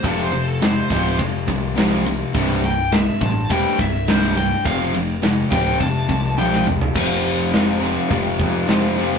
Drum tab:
CC |----------------|----------------|----------------|x---------------|
RD |x-x-x-x-x-x-x-x-|x-x-x-x-x-x-x-x-|x-x-x-x-x-x-----|----------------|
HH |----------------|----------------|----------------|----o---o---o---|
SD |----o-------o---|----o-------oo-o|----o--------o--|----o-o-----o--o|
T1 |----------------|----------------|------------o---|----------------|
T2 |----------------|----------------|--------------o-|----------------|
FT |----------------|----------------|---------------o|----------------|
BD |o-----o-o-o-----|o-----o-o-o-----|o-----o-o-o-----|o-------o-o-----|